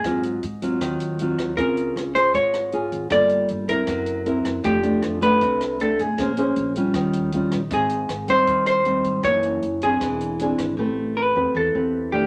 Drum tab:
HH |xxxxxxxx|xxxxxxxx|xxxxxxxx|xxxxxxxx|
SD |r---r--r|--r--r--|r---r--r|--r--r--|
BD |o--oo--o|o--oo--o|o--oo--o|o--oo--o|

HH |xxxxxxxx|xxxxxxxx|xxxxxxxx|--------|
SD |r---r--r|--r--r--|r---r--r|--------|
BD |o--oo--o|o--oo--o|o--oo--o|--------|